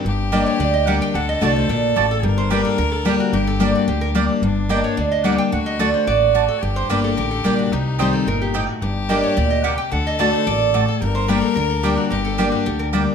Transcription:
<<
  \new Staff \with { instrumentName = "Resonator guitar played with a steel bar" } { \time 4/4 \key g \minor \tempo 4 = 219 r4 ees''8 cis''8 d''8 ees''8 fis''8 g''8 | fis''8 ees''8 d''8 c''8 d''4. a'8 | g'8 c''8 b'8 a'8 bes'8 a'8 g'8 fis'8 | bes'8 a'8 g'8 fis'8 g'8 bes'8 r4 |
r4 ees''8 cis''8 d''8 ees''8 fis''8 g''8 | fis''8 ees''8 d''8 c''8 d''4. a'8 | g'8 c''8 b'8 a'8 bes'8 a'8 g'8 fis'8 | g'4 c''8 a'8 bes'8 g'8 ees'8 fis'8 |
r4 ees''8 cis''8 d''8 ees''8 fis''8 g''8 | fis''8 ees''8 d''8 c''8 d''4. a'8 | g'8 c''8 b'8 a'8 bes'8 a'8 g'8 fis'8 | bes'8 a'8 g'8 fis'8 g'8 bes'8 r4 | }
  \new Staff \with { instrumentName = "Mandolin" } { \time 4/4 \key g \minor r4 <bes g' d'' g''>8 r4. <bes g' d'' g''>8 r8 | r4 <a fis' d'' a''>8 r4. <a fis' d'' a''>8 r8 | r4 <bes g' d'' g''>8 r4. <bes g' d'' g''>8 r8 | r4 <bes g' d'' g''>8 r4. <bes g' d'' g''>8 r8 |
r4 <bes g' d'' g''>8 r4. <bes g' d'' g''>8 r8 | r4 <a fis' d'' a''>8 r4. <a fis' d'' a''>8 r8 | r4 <bes g' d'' g''>8 r4. <bes g' d'' g''>8 r8 | r4 <c' g' ees'' g''>8 r4. <c' g' ees'' g''>8 r8 |
r4 <bes g' d'' g''>8 r4. <bes g' d'' g''>8 r8 | r4 <a fis' d'' a''>8 r4. <a fis' d'' a''>8 r8 | r4 <bes g' d'' g''>8 r4. <bes g' d'' g''>8 r8 | r4 <bes g' d'' g''>8 r4. <bes g' d'' g''>8 r8 | }
  \new Staff \with { instrumentName = "Fiddle" } { \time 4/4 \key g \minor g'1 | a'1 | bes'1 | g'2.~ g'8 r8 |
d'1 | fis'2 fis'2 | g'1 | ees'2.~ ees'8 r8 |
g'1 | a'1 | bes'1 | g'2.~ g'8 r8 | }
  \new Staff \with { instrumentName = "Steel-string acoustic guitar" } { \time 4/4 \key g \minor << { r4 <g bes d' g'>4 r4 <g bes d' g'>4 | r4 <d a d' fis'>4 r2 | r4 <g bes d' g'>4 r4 <g bes d' g'>4 | r4 <g bes d' g'>4 r4 <g bes d' g'>4 |
r4 <g bes d' g'>4 r4 <g bes d' g'>4 | r4 <d a d' fis'>4 r2 | r4 <g bes d' g'>4 r4 <g bes d' g'>4 | r4 <ees g c' g'>4 r2 |
r4 <g bes d' g'>4 r2 | r4 <d a d' fis'>4 r2 | r4 <g bes d' g'>4 r4 <g bes d' g'>4 | r4 <g bes d' g'>4 r4 <g bes d' g'>4 | } \\ { g,2 d2 | d2 bes,4 a,4 | g,2 d2 | g,2 d2 |
g,2 d2 | d2 bes,4 a,4 | g,2 d2 | c2 bes,4 a,4 |
g,2 bes,4 c4 | d2 bes,4 a,4 | g,2 d2 | g,2 d2 | } >> }
  \new Staff \with { instrumentName = "Upright bass" } { \clef bass \time 4/4 \key g \minor g,,2 d,2 | d,4 c,4 bes,,4 a,,4 | g,,2 d,2 | g,,2 d,2 |
g,,2 d,2 | d,2 a,,2 | g,,4 g,,4 a,,4 bes,,4 | c,2 g,,2 |
g,,2 d,2 | d,2 a,,2 | g,,2 d,2 | g,,2 d,2 | }
>>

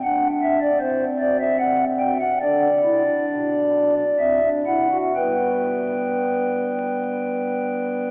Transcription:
<<
  \new Staff \with { instrumentName = "Pipe organ" } { \time 3/4 \key g \major \tempo 4 = 66 << { fis''8 e''16 d''16 c''8 d''16 e''16 fis''8 g''16 fis''16 | d''2 e''8 fis''8 | <g b g''>2. | } \\ { d'4 c'2 | d'8 e'16 d'4~ d'16 c'16 d'16 e'16 fis'16 | b'2. | } >> }
  \new Staff \with { instrumentName = "Pipe organ" } { \clef bass \time 3/4 \key g \major <e,, e,>8 <g,, g,>8 <a,, a,>8 <b,, b,>8 <c, c>8 <b,, b,>8 | <d, d>8 <c, c>8 <b,, b,>4 <a,, a,>8 <c, c>8 | <g,, g,>2. | }
>>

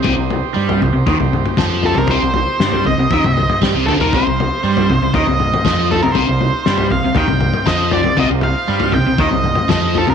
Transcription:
<<
  \new Staff \with { instrumentName = "Lead electric guitar" } { \time 4/4 \key c \minor \tempo 4 = 118 r2. r8 a'16 bes'16 | c''4. ees''4. r8 a'16 bes'16 | c''2 ees''4. a'16 bes'16 | c''4. f''8 g''4 ees''8 d''8 |
ees''8 f''4 g''8 ees''4 ees''8 a'16 bes'16 | }
  \new Staff \with { instrumentName = "Transistor combo organ" } { \time 4/4 \key c \minor << { <c' ees' c''>1~ | <c' ees' c''>1~ | <c' ees' c''>1~ | <c' ees' c''>1~ |
<c' ees' c''>1 | } \\ { g'1~ | g'1 | f'1~ | f'1~ |
f'1 | } >> }
  \new Staff \with { instrumentName = "Overdriven electric guitar" } { \clef bass \time 4/4 \key c \minor c16 c8 r16 g8 c16 c16 ees16 c8 r16 f8. c16 | c16 c8 r16 g8 c16 c16 ees16 c8 r16 g16 c16 d16 ees16 | c16 c8 r16 g8 c16 c16 ees16 c8 r16 f8. c16 | c16 c8 r16 g8 c16 c16 ees16 c8 r16 f8. c16 |
c16 c8 r16 g8 c16 c16 ees16 c8 r16 f8. c16 | }
  \new Staff \with { instrumentName = "Fingered electric bass" } { \clef bass \time 4/4 \key c \minor c,16 c,8 r16 g,8 c,16 c,16 ees,16 c,8 r16 f,8. c,16 | c,16 c,8 r16 g,8 c,16 c,16 ees,16 c,8 r16 g,16 c,16 d,16 ees,16 | c,16 c,8 r16 g,8 c,16 c,16 ees,16 c,8 r16 f,8. c,16 | c,16 c,8 r16 g,8 c,16 c,16 ees,16 c,8 r16 f,8. c,16 |
c,16 c,8 r16 g,8 c,16 c,16 ees,16 c,8 r16 f,8. c,16 | }
  \new DrumStaff \with { instrumentName = "Drums" } \drummode { \time 4/4 <bd tomfh>8 tomfh8 r16 tomfh16 tomfh8 <bd tomfh>16 tomfh16 toml16 <tomfh toml>16 <bd sn toml>8 tomfh16 tomfh16 | <bd tomfh>8 tomfh8 sn16 tomfh16 tomfh8 <bd tomfh>16 <tomfh toml>16 <tomfh toml>16 <tomfh toml>16 <bd sn>8 tomfh16 tomfh16 | <bd tomfh>8 tomfh8 r16 tomfh16 tomfh8 <bd tomfh>16 tomfh16 toml16 <tomfh toml>16 <bd sn toml>8 tomfh16 tomfh16 | <bd tomfh>8 tomfh8 sn16 tomfh16 tomfh8 <bd tomfh>16 <tomfh toml>16 <tomfh toml>16 <tomfh toml>16 <bd sn>8 tomfh16 tomfh16 |
<bd tomfh>8 tomfh8 r16 tomfh16 tomfh8 <bd tomfh>16 tomfh16 toml16 <tomfh toml>16 <bd sn toml>8 tomfh16 tomfh16 | }
>>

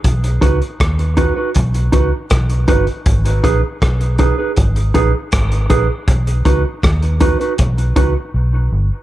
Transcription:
<<
  \new Staff \with { instrumentName = "Clean electric guitar" } { \time 4/4 \key b \major \tempo 4 = 80 r8 <dis' fis' b'>16 r8. <dis' fis' b'>16 <dis' fis' b'>16 r8 <dis' fis' b'>16 r8. <dis' fis' b'>16 r16 | r8 <dis' gis' b'>16 r8. <dis' gis' b'>16 <dis' gis' b'>16 r8 <dis' gis' b'>16 r8. <dis' gis' b'>16 r16 | r8 <dis' fis' b'>16 r8. <dis' fis' b'>16 <dis' fis' b'>16 r8 <dis' fis' b'>16 r4 r16 | }
  \new Staff \with { instrumentName = "Fingered electric bass" } { \clef bass \time 4/4 \key b \major b,,8 cis,16 r16 dis,8. r16 b,,8 cis,16 r16 b,,8 g,,16 r16 | gis,,8 ais,,16 r16 b,,8. r16 gis,,8 ais,,16 r16 gis,,8 ais,,16 r16 | b,,8 cis,16 r16 dis,8. r16 b,,8 cis,16 r16 b,,8 g,,16 r16 | }
  \new DrumStaff \with { instrumentName = "Drums" } \drummode { \time 4/4 <hh bd>16 hh16 <hh bd>16 hh16 <hh bd ss>16 hh16 <hh bd>8 <hh bd>16 hh16 <hh bd>8 <hh bd ss>16 hh16 <hh bd>16 hh16 | <hh bd>16 hh16 <hh bd>8 <hh bd ss>16 hh16 <hh bd>8 <hh bd>16 hh16 <hh bd>8 <hh bd ss>16 hh16 <hh bd>8 | <hh bd>16 hh16 <hh bd>8 <hh bd ss>16 hh16 <hh bd>16 hh16 <hh bd>16 hh16 <hh bd>8 r4 | }
>>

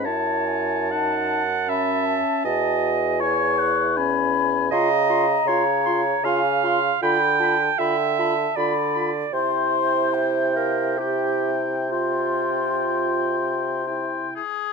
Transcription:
<<
  \new Staff \with { instrumentName = "Oboe" } { \time 3/4 \key cis \minor \tempo 4 = 77 a''2.~ | a''8 r8 gis''8 fis''8 gis''4 | \key c \phrygian c'''8 c'''8 c'''8 c'''8 c'''8 c'''8 | b''8 b''8 b''8 b''8 b''8 b''8 |
g''2 g''4 | g''2 g''8 aes'8 | }
  \new Staff \with { instrumentName = "Flute" } { \time 3/4 \key cis \minor a''8 gis''8 a''8 r8 b''8 a''8 | gis''4 cis'''4 b''4 | \key c \phrygian bes''2 aes''8 c'''8 | b''8 a''8 g''8 a''8 b''8 r8 |
c'''4 e''8 f''8 g''4 | c'''2~ c'''8 r8 | }
  \new Staff \with { instrumentName = "Clarinet" } { \time 3/4 \key cis \minor cis''4 fis''4 e''4 | dis''4 cis''4 r4 | \key c \phrygian ees''4 des''4 f''4 | g''4 e''4 d''4 |
c''4. bes'8 g'8 r8 | f'2 r4 | }
  \new Staff \with { instrumentName = "French horn" } { \time 3/4 \key cis \minor e'4 dis'8 r8 cis'4 | fis'4 e'4 cis'4 | \key c \phrygian f'8 f'8 f'8 f'8 f'8 f'8 | f'8 f'8 f'8 f'8 f'8 f'8 |
e'2 e'4 | f'2 e'8 r8 | }
  \new Staff \with { instrumentName = "Bassoon" } { \clef bass \time 3/4 \key cis \minor fis,2~ fis,8 r8 | e,2. | \key c \phrygian des4 des4 des4 | d4 d4 d4 |
c2.~ | c2~ c8 r8 | }
>>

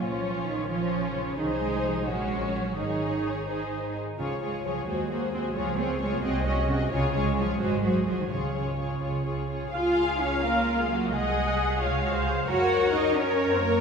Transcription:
<<
  \new Staff \with { instrumentName = "Violin section" } { \time 6/8 \key des \major \tempo 4. = 87 des''4. des''4. | c''4. des''4. | des''4. c''4 r8 | des''8 des''8 des''8 c''8 c''8 c''8 |
des''8 des''8 des''8 ees''8 ees''8 ees''8 | des''8 des''8 des''8 c''8 c''8 c''8 | des''8 des''8 des''8 des''8 des''8 des''8 | aes'4. f'4. |
aes'4. f'8 ges'8 aes'8 | bes'2. | }
  \new Staff \with { instrumentName = "Violin section" } { \time 6/8 \key des \major f'4. f'4. | aes'4. ges'4. | aes'4. aes'4 r8 | aes'8 aes'8 aes'8 aes'8 aes'8 aes'8 |
aes'8 aes'8 aes'8 aes'8 aes'8 aes'8 | aes'8 aes'8 aes'8 aes'8 aes'8 aes'8 | aes'8 aes'8 aes'8 aes'8 aes'8 aes'8 | f''4 des''8 bes'8. aes'16 ges'8 |
aes'2~ aes'8 r8 | ges''4 ees''8 des''8. c''16 bes'8 | }
  \new Staff \with { instrumentName = "Viola section" } { \time 6/8 \key des \major << { r2. | r2. | r2. | r2. |
r2. | r2. | r2. | f''2. |
ges''4. f''4. | des''4. des''4. | } \\ { des'4. des'4. | ees'4. des'4. | ees'4. ees'4 r8 | f'8 f'8 f'8 ges'8 ges'8 ges'8 |
f'8 f'8 f'8 ges'8 ges'8 ges'8 | f'8 f'8 f'8 ges'8 ges'8 ges'8 | f'8 f'8 f'8 f'8 f'8 f'8 | f''2. |
ees''4. des''8. c''8. | bes'4. bes'4. | } >> }
  \new Staff \with { instrumentName = "Cello section" } { \clef bass \time 6/8 \key des \major f4 ees8 f4 des8 | ees8 aes8 f16 ges16 aes4 ges8 | ees2~ ees8 r8 | des8 aes8 f16 ges16 aes8 bes8 c'16 aes16 |
f8 c'8 aes16 bes16 c'8 des'8 c8 | des8 aes8 f16 ges16 aes8 ges8 f16 ees16 | des2~ des8 r8 | f'4 des'8 bes8. aes16 ges8 |
aes2~ aes8 r8 | ges'4 ees'8 des'8. c'16 bes8 | }
  \new Staff \with { instrumentName = "Double bass section" } { \clef bass \time 6/8 \key des \major bes,,2. | c,4. bes,,4. | aes,,2~ aes,,8 r8 | des,4. ees,4. |
des,4. c,4. | des,4. aes,,4. | des,4. des,4. | des,2. |
c,4. des,4. | ges,2. | }
>>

